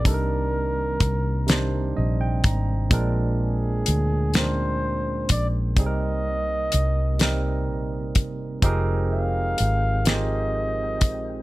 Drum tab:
HH |x-xx-x|x-xx-x|x-xx-x|x-xx-x|
SD |---o--|---o--|---o--|---o--|
BD |o-o--o|o----o|o----o|o----o|